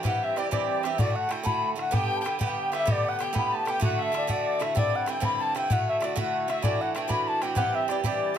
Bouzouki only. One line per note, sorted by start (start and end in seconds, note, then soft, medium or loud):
0.03 0.35 G2 medium
0.03 0.36 E3 medium
0.03 0.36 C4 medium
0.03 0.38 G4 medium
0.36 0.50 G2 medium
0.36 0.50 E3 medium
0.36 0.51 C4 medium
0.36 0.52 G4 medium
0.51 0.82 G2 medium
0.51 0.84 E3 medium
0.51 0.84 C4 medium
0.51 0.85 G4 medium
0.83 0.98 G2 medium
0.83 0.98 E3 medium
0.83 0.99 C4 medium
0.83 1.00 G4 medium
0.98 1.28 A2 medium
0.98 1.30 D3 medium
0.98 1.29 A3 medium
0.98 1.31 F#4 medium
1.29 1.42 A2 medium
1.29 1.43 D3 medium
1.29 1.44 A3 medium
1.29 1.44 F#4 medium
1.43 1.74 A2 medium
1.43 1.76 D3 medium
1.43 1.76 A3 medium
1.43 1.76 F#4 medium
1.76 1.91 A2 medium
1.76 1.90 D3 medium
1.76 1.92 A3 medium
1.76 1.92 F#4 medium
1.91 2.23 G2 medium
1.91 2.25 D3 medium
1.91 2.25 B3 medium
1.91 2.25 G4 medium
2.24 2.38 G2 medium
2.24 2.38 D3 medium
2.24 2.40 B3 medium
2.24 2.39 G4 medium
2.39 2.71 G2 medium
2.39 2.72 D3 medium
2.39 2.72 B3 medium
2.39 2.73 G4 medium
2.72 2.85 G2 medium
2.72 2.86 D3 soft
2.72 2.86 B3 medium
2.72 2.86 G4 medium
2.85 3.17 A2 medium
2.85 3.20 D3 medium
2.85 3.19 B3 medium
2.85 3.20 G4 medium
3.19 3.32 A2 medium
3.19 3.32 D3 medium
3.19 3.33 B3 medium
3.19 3.33 G4 medium
3.33 3.64 A2 medium
3.33 3.66 D3 medium
3.33 3.66 B3 medium
3.33 3.67 G4 medium
3.65 3.78 A2 soft
3.65 3.80 D3 medium
3.65 3.81 B3 medium
3.65 3.82 G4 medium
3.80 4.11 A2 medium
3.80 4.12 D3 medium
3.80 4.13 A3 medium
3.80 4.13 F#4 medium
4.12 4.26 A2 medium
4.12 4.27 D3 medium
4.12 4.28 A3 medium
4.12 4.28 F#4 medium
4.27 4.58 A2 medium
4.27 4.60 D3 medium
4.27 4.60 A3 medium
4.27 4.61 F#4 medium
4.60 4.74 A2 medium
4.60 4.74 D3 medium
4.60 4.75 A3 medium
4.60 4.76 F#4 medium
4.75 5.05 G2 medium
4.75 5.07 D3 medium
4.75 5.07 C4 medium
4.75 5.08 E4 medium
5.06 5.19 G2 medium
5.06 5.20 D3 medium
5.06 5.20 C4 medium
5.06 5.21 E4 medium
5.20 5.53 G2 medium
5.20 5.55 D3 medium
5.20 5.54 C4 medium
5.20 5.55 E4 medium
5.55 5.70 G2 medium
5.55 5.69 D3 medium
5.55 5.70 C4 medium
5.55 5.71 E4 medium
5.70 5.99 A2 medium
5.70 6.00 D3 medium
5.70 6.01 A3 medium
5.70 6.03 F#4 medium
6.00 6.14 A2 medium
6.00 6.15 D3 medium
6.00 6.16 A3 medium
6.00 6.16 F#4 medium
6.16 6.47 A2 medium
6.16 6.47 D3 medium
6.16 6.48 A3 medium
6.16 6.49 F#4 medium
6.48 6.61 A2 medium
6.48 6.63 D3 medium
6.48 6.64 A3 medium
6.48 6.63 F#4 medium
6.62 6.93 A2 medium
6.62 6.95 E3 medium
6.62 6.95 D4 medium
6.62 6.96 F#4 medium
6.95 7.07 A2 medium
6.95 7.07 E3 medium
6.95 7.08 D4 medium
6.95 7.09 F#4 medium
7.08 7.40 A2 medium
7.08 7.41 E3 medium
7.08 7.42 D4 medium
7.08 7.42 F#4 medium
7.42 7.55 A2 medium
7.42 7.55 E3 medium
7.42 7.56 D4 medium
7.42 7.57 F#4 medium
7.55 7.87 G2 medium
7.55 7.88 E3 medium
7.55 7.89 C4 medium
7.55 7.90 G4 medium
7.88 8.03 G2 medium
7.88 8.03 E3 medium
7.88 8.03 C4 medium
7.88 8.05 G4 medium
8.04 8.33 G2 medium
8.04 8.34 E3 medium
8.04 8.35 C4 medium
8.04 8.36 G4 loud
8.34 8.38 G2 medium